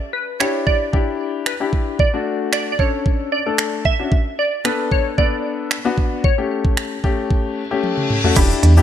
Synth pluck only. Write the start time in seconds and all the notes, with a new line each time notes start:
Already playing: D5
0.13 B4
0.40 C#5
0.67 D5
1.47 B4
2.00 D5
2.53 D5
2.72 D5
2.80 C#5
3.32 D5
3.85 E5
4.39 D5
4.65 B4
4.92 C#5
5.18 D5
6.24 C#5